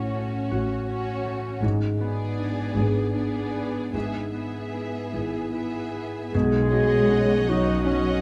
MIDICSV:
0, 0, Header, 1, 9, 480
1, 0, Start_track
1, 0, Tempo, 752823
1, 1037, Time_signature, 6, 3, 24, 8
1, 2010, Tempo, 794702
1, 3930, Tempo, 758534
1, 5120, End_track
2, 0, Start_track
2, 0, Title_t, "Violin section"
2, 0, Program_c, 0, 48
2, 0, Note_on_c, 0, 73, 39
2, 552, Note_off_c, 0, 73, 0
2, 569, Note_on_c, 0, 73, 51
2, 1030, Note_off_c, 0, 73, 0
2, 1273, Note_on_c, 0, 74, 49
2, 1994, Note_off_c, 0, 74, 0
2, 2009, Note_on_c, 0, 74, 47
2, 2476, Note_off_c, 0, 74, 0
2, 2480, Note_on_c, 0, 76, 33
2, 2713, Note_off_c, 0, 76, 0
2, 2721, Note_on_c, 0, 76, 33
2, 3432, Note_off_c, 0, 76, 0
2, 3445, Note_on_c, 0, 76, 37
2, 3919, Note_off_c, 0, 76, 0
2, 4170, Note_on_c, 0, 78, 51
2, 4879, Note_off_c, 0, 78, 0
2, 4891, Note_on_c, 0, 78, 56
2, 5120, Note_off_c, 0, 78, 0
2, 5120, End_track
3, 0, Start_track
3, 0, Title_t, "Violin section"
3, 0, Program_c, 1, 48
3, 0, Note_on_c, 1, 66, 41
3, 552, Note_off_c, 1, 66, 0
3, 567, Note_on_c, 1, 66, 45
3, 1029, Note_off_c, 1, 66, 0
3, 1275, Note_on_c, 1, 68, 50
3, 1995, Note_off_c, 1, 68, 0
3, 2009, Note_on_c, 1, 68, 43
3, 2476, Note_off_c, 1, 68, 0
3, 2487, Note_on_c, 1, 68, 35
3, 2723, Note_off_c, 1, 68, 0
3, 2735, Note_on_c, 1, 68, 33
3, 3439, Note_off_c, 1, 68, 0
3, 3457, Note_on_c, 1, 68, 33
3, 3925, Note_off_c, 1, 68, 0
3, 4174, Note_on_c, 1, 75, 52
3, 4176, Note_on_c, 1, 73, 52
3, 4880, Note_off_c, 1, 75, 0
3, 4882, Note_off_c, 1, 73, 0
3, 4895, Note_on_c, 1, 73, 49
3, 4896, Note_on_c, 1, 75, 52
3, 5120, Note_off_c, 1, 73, 0
3, 5120, Note_off_c, 1, 75, 0
3, 5120, End_track
4, 0, Start_track
4, 0, Title_t, "Clarinet"
4, 0, Program_c, 2, 71
4, 3935, Note_on_c, 2, 68, 96
4, 4662, Note_on_c, 2, 66, 72
4, 4671, Note_off_c, 2, 68, 0
4, 5120, Note_off_c, 2, 66, 0
4, 5120, End_track
5, 0, Start_track
5, 0, Title_t, "Felt piano"
5, 0, Program_c, 3, 0
5, 0, Control_c, 3, 64, 127
5, 0, Note_on_c, 3, 45, 43
5, 305, Note_off_c, 3, 45, 0
5, 328, Note_on_c, 3, 61, 34
5, 331, Note_on_c, 3, 66, 39
5, 1013, Note_off_c, 3, 61, 0
5, 1014, Note_off_c, 3, 66, 0
5, 1037, Note_on_c, 3, 44, 53
5, 1049, Control_c, 3, 64, 0
5, 1142, Control_c, 3, 64, 127
5, 1743, Note_off_c, 3, 44, 0
5, 1767, Note_on_c, 3, 59, 37
5, 1768, Note_on_c, 3, 62, 37
5, 1772, Note_on_c, 3, 68, 40
5, 2463, Note_off_c, 3, 59, 0
5, 2463, Note_off_c, 3, 62, 0
5, 2465, Note_off_c, 3, 68, 0
5, 2494, Note_on_c, 3, 44, 36
5, 2497, Control_c, 3, 64, 0
5, 2589, Control_c, 3, 64, 127
5, 3192, Note_off_c, 3, 44, 0
5, 3210, Note_on_c, 3, 59, 26
5, 3214, Note_on_c, 3, 64, 25
5, 3217, Note_on_c, 3, 68, 27
5, 3907, Note_off_c, 3, 59, 0
5, 3909, Note_off_c, 3, 64, 0
5, 3910, Note_off_c, 3, 68, 0
5, 3939, Note_on_c, 3, 35, 56
5, 3944, Control_c, 3, 64, 0
5, 4036, Control_c, 3, 64, 127
5, 4178, Note_on_c, 3, 66, 47
5, 4415, Note_on_c, 3, 61, 43
5, 4563, Note_off_c, 3, 66, 0
5, 4656, Note_on_c, 3, 63, 39
5, 4800, Note_off_c, 3, 61, 0
5, 4895, Note_off_c, 3, 63, 0
5, 4898, Note_on_c, 3, 61, 42
5, 5120, Note_off_c, 3, 35, 0
5, 5120, Note_off_c, 3, 61, 0
5, 5120, End_track
6, 0, Start_track
6, 0, Title_t, "Harp"
6, 0, Program_c, 4, 46
6, 0, Note_on_c, 4, 45, 42
6, 0, Note_on_c, 4, 61, 35
6, 0, Note_on_c, 4, 66, 31
6, 92, Note_on_c, 4, 57, 35
6, 320, Note_off_c, 4, 66, 0
6, 327, Note_on_c, 4, 66, 45
6, 557, Note_off_c, 4, 61, 0
6, 564, Note_on_c, 4, 61, 42
6, 792, Note_off_c, 4, 57, 0
6, 800, Note_on_c, 4, 57, 43
6, 1039, Note_on_c, 4, 44, 52
6, 1056, Note_off_c, 4, 45, 0
6, 1056, Note_off_c, 4, 57, 0
6, 1056, Note_off_c, 4, 61, 0
6, 1057, Note_off_c, 4, 66, 0
6, 1279, Note_on_c, 4, 59, 43
6, 1519, Note_on_c, 4, 62, 41
6, 1763, Note_on_c, 4, 68, 46
6, 2000, Note_off_c, 4, 62, 0
6, 2008, Note_on_c, 4, 62, 41
6, 2239, Note_off_c, 4, 59, 0
6, 2246, Note_on_c, 4, 59, 35
6, 2480, Note_off_c, 4, 44, 0
6, 2487, Note_on_c, 4, 44, 37
6, 2504, Note_off_c, 4, 62, 0
6, 2721, Note_off_c, 4, 59, 0
6, 2729, Note_on_c, 4, 59, 29
6, 2969, Note_on_c, 4, 64, 26
6, 3205, Note_off_c, 4, 68, 0
6, 3212, Note_on_c, 4, 68, 32
6, 3446, Note_off_c, 4, 64, 0
6, 3453, Note_on_c, 4, 64, 32
6, 3688, Note_off_c, 4, 59, 0
6, 3695, Note_on_c, 4, 59, 30
6, 3936, Note_on_c, 4, 47, 58
6, 3951, Note_off_c, 4, 44, 0
6, 3952, Note_off_c, 4, 64, 0
6, 3952, Note_off_c, 4, 68, 0
6, 4177, Note_on_c, 4, 61, 46
6, 4422, Note_on_c, 4, 66, 46
6, 4667, Note_on_c, 4, 73, 52
6, 4903, Note_on_c, 4, 75, 50
6, 5120, Note_off_c, 4, 47, 0
6, 5120, Note_off_c, 4, 59, 0
6, 5120, Note_off_c, 4, 61, 0
6, 5120, Note_off_c, 4, 66, 0
6, 5120, Note_off_c, 4, 73, 0
6, 5120, Note_off_c, 4, 75, 0
6, 5120, End_track
7, 0, Start_track
7, 0, Title_t, "Viola section"
7, 0, Program_c, 5, 48
7, 0, Note_on_c, 5, 61, 40
7, 550, Note_off_c, 5, 61, 0
7, 565, Note_on_c, 5, 61, 49
7, 1028, Note_off_c, 5, 61, 0
7, 1274, Note_on_c, 5, 59, 49
7, 1995, Note_off_c, 5, 59, 0
7, 2011, Note_on_c, 5, 59, 47
7, 2477, Note_off_c, 5, 59, 0
7, 2487, Note_on_c, 5, 59, 32
7, 2718, Note_off_c, 5, 59, 0
7, 2725, Note_on_c, 5, 59, 36
7, 3434, Note_off_c, 5, 59, 0
7, 3448, Note_on_c, 5, 59, 37
7, 3921, Note_off_c, 5, 59, 0
7, 4652, Note_on_c, 5, 63, 63
7, 4876, Note_off_c, 5, 63, 0
7, 4892, Note_on_c, 5, 61, 63
7, 5120, Note_off_c, 5, 61, 0
7, 5120, End_track
8, 0, Start_track
8, 0, Title_t, "Cello section"
8, 0, Program_c, 6, 48
8, 321, Note_on_c, 6, 45, 59
8, 938, Note_off_c, 6, 45, 0
8, 1035, Note_on_c, 6, 44, 67
8, 1665, Note_off_c, 6, 44, 0
8, 1763, Note_on_c, 6, 44, 59
8, 2388, Note_off_c, 6, 44, 0
8, 2480, Note_on_c, 6, 44, 46
8, 3111, Note_off_c, 6, 44, 0
8, 3211, Note_on_c, 6, 44, 44
8, 3837, Note_off_c, 6, 44, 0
8, 3933, Note_on_c, 6, 56, 79
8, 4632, Note_off_c, 6, 56, 0
8, 4657, Note_on_c, 6, 54, 63
8, 5120, Note_off_c, 6, 54, 0
8, 5120, End_track
9, 0, Start_track
9, 0, Title_t, "Double bass section"
9, 0, Program_c, 7, 48
9, 0, Note_on_c, 7, 33, 51
9, 229, Note_off_c, 7, 33, 0
9, 326, Note_on_c, 7, 33, 58
9, 941, Note_off_c, 7, 33, 0
9, 1034, Note_on_c, 7, 32, 69
9, 1664, Note_off_c, 7, 32, 0
9, 1765, Note_on_c, 7, 32, 62
9, 2389, Note_off_c, 7, 32, 0
9, 2482, Note_on_c, 7, 32, 44
9, 3112, Note_off_c, 7, 32, 0
9, 3209, Note_on_c, 7, 32, 42
9, 3837, Note_off_c, 7, 32, 0
9, 3932, Note_on_c, 7, 35, 66
9, 4572, Note_off_c, 7, 35, 0
9, 4659, Note_on_c, 7, 35, 62
9, 5120, Note_off_c, 7, 35, 0
9, 5120, End_track
0, 0, End_of_file